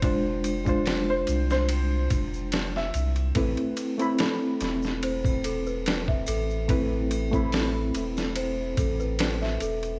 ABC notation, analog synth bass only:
X:1
M:4/4
L:1/8
Q:"Swing 16ths" 1/4=72
K:Am
V:1 name="Analog synth bass" clef=bass
F,,,3 C,,2 F,,,2 C,, | A,,, z2 E,,,4 A,,,- | A,,,3 E,,,2 A,,,2 E,,, |]